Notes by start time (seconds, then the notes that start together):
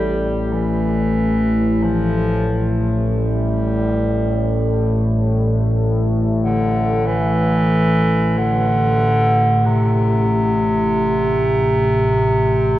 Already playing: A1 A2 G3 G4
0.53 E3
1.83 F3
3.13 G3
6.43 D3
7.06 E3
8.38 D3
9.66 C3